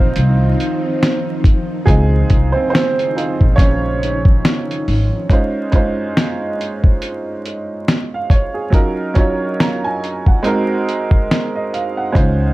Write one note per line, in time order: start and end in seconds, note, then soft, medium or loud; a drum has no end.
0.00 0.13 A#1 medium
0.00 5.26 D#3 medium
0.00 5.26 F3 medium
0.00 1.84 C4 medium
0.00 1.86 C4 medium
0.00 1.87 D#4 medium
0.00 5.26 D#4 medium
0.00 1.88 F4 medium
0.00 2.52 C5 medium
0.00 5.32 D#5 medium
0.00 5.32 F5 loud
0.16 0.52 C2 loud
0.16 closed hi-hat medium
0.60 closed hi-hat medium
1.03 snare loud
1.03 closed hi-hat medium
1.44 kick loud
1.44 closed hi-hat medium
1.86 2.23 C#2 loud
1.86 5.26 C#3 medium
1.86 2.52 G#3 medium
1.86 2.54 C4 medium
1.86 3.12 D#4 medium
1.86 3.12 F4 medium
1.86 2.57 G#4 medium
1.86 kick loud
1.86 closed hi-hat medium
2.30 2.51 C2 medium
2.30 kick medium
2.30 closed hi-hat medium
2.52 2.72 C4 medium
2.52 2.69 C5 medium
2.70 3.14 C4 medium
2.70 3.60 C5 loud
2.75 snare loud
2.75 closed hi-hat medium
2.99 closed hi-hat soft
3.16 3.55 C4 soft
3.16 3.55 D#4 soft
3.16 3.55 F4 medium
3.16 closed hi-hat medium
3.41 4.40 A#1 medium
3.41 kick medium
3.56 4.84 C#4 medium
3.56 4.82 C#5 loud
3.56 kick medium
3.56 closed hi-hat medium
4.03 closed hi-hat medium
4.25 kick loud
4.45 snare loud
4.45 closed hi-hat medium
4.71 closed hi-hat soft
4.88 5.09 G#1 medium
4.88 open hi-hat soft
5.29 5.69 G#3 medium
5.29 5.69 C#4 medium
5.29 5.70 D#4 medium
5.29 5.70 F4 medium
5.29 5.71 C5 medium
5.29 kick loud
5.29 closed hi-hat medium
5.72 7.30 G#3 medium
5.72 7.30 C#4 medium
5.72 7.31 D#4 medium
5.72 7.31 F4 medium
5.72 7.32 C5 medium
5.72 kick medium
5.72 closed hi-hat medium
6.17 snare loud
6.17 closed hi-hat medium
6.61 closed hi-hat medium
6.84 kick medium
7.02 closed hi-hat medium
7.46 closed hi-hat medium
7.88 snare loud
7.88 closed hi-hat medium
8.14 8.30 F5 medium
8.30 8.54 C#5 medium
8.30 kick medium
8.30 closed hi-hat medium
8.54 8.96 G#4 soft
8.70 9.11 F#3 medium
8.70 9.12 C#4 medium
8.70 9.12 D#4 medium
8.70 9.12 F4 medium
8.70 kick medium
8.70 closed hi-hat medium
8.74 9.13 A#4 medium
9.14 10.43 F#3 medium
9.14 10.44 C#4 medium
9.14 10.43 D#4 medium
9.14 10.45 F4 medium
9.14 10.45 C#5 medium
9.14 kick medium
9.14 closed hi-hat medium
9.60 9.83 A#5 medium
9.60 snare loud
9.60 closed hi-hat medium
9.84 10.25 G#5 medium
10.04 closed hi-hat medium
10.26 10.68 F#5 medium
10.26 kick medium
10.43 12.01 G#3 medium
10.43 12.01 C4 medium
10.43 12.02 D#4 medium
10.43 12.02 F#4 medium
10.43 closed hi-hat medium
10.47 12.03 A#4 medium
10.89 closed hi-hat medium
11.11 kick medium
11.31 snare loud
11.31 closed hi-hat medium
11.55 11.72 D#5 medium
11.73 11.97 F5 medium
11.73 closed hi-hat medium
11.97 12.38 F#5 medium
12.12 12.51 C#2 medium
12.12 12.53 G#3 medium
12.12 12.53 C#4 medium
12.12 12.53 D#4 medium
12.12 12.53 F4 medium
12.12 12.53 C5 medium
12.12 kick loud
12.12 closed hi-hat medium